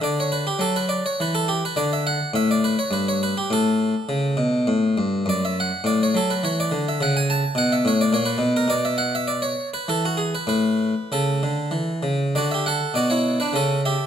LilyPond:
<<
  \new Staff \with { instrumentName = "Harpsichord" } { \time 3/4 \key d \major \tempo 4 = 102 d''16 cis''16 b'16 g'16 a'16 b'16 d''16 cis''16 b'16 a'16 g'16 b'16 | d''16 e''16 fis''8 e''16 d''16 b'16 cis''16 b'16 cis''16 b'16 g'16 | a'2~ a'8 r8 | \key a \major d''16 e''16 fis''8 d''16 cis''16 a'16 b'16 cis''16 d''8 e''16 |
fis''16 gis''16 a''8 fis''16 e''16 cis''16 d''16 des''16 b'8 bes'16 | d''16 e''16 fis''16 e''16 d''16 cis''8 b'16 a'16 fis'16 gis'16 b'16 | b'4 a'4. r8 | \key d \major <fis' d''>16 <g' e''>16 <a' fis''>8 <fis' d''>16 <e' cis''>8 <d' b'>16 <cis' a'>8 <g' e''>8 | }
  \new Staff \with { instrumentName = "Harpsichord" } { \clef bass \time 3/4 \key d \major d4 fis4 e4 | d4 a,4 g,4 | a,4 cis8 b,8 a,8 g,8 | \key a \major fis,4 a,8 fis8 e8 d8 |
cis4 b,8 a,8 bes,8 b,8 | b,2 e4 | a,4 cis8 d8 e8 cis8 | \key d \major d4 b,4 cis4 | }
>>